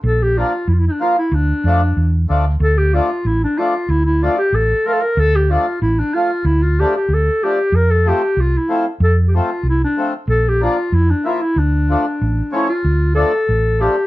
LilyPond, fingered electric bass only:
\new Staff \with { instrumentName = "Fingered electric bass" } { \clef bass \time 2/4 \key d \minor \tempo 4 = 94 bes,,4 f,8 r8 | d,8 f,8 e,8 d,8 | d,4 a,,8 r8 | d,4 a,,8 r8 |
d,4 a,,8 r8 | d,4 d,8 r8 | f,4 c,8 r8 | f,4 c,8 r8 |
bes,,4 f,8 r8 | d,4 a,,8 r8 | d,4 a,,4 | }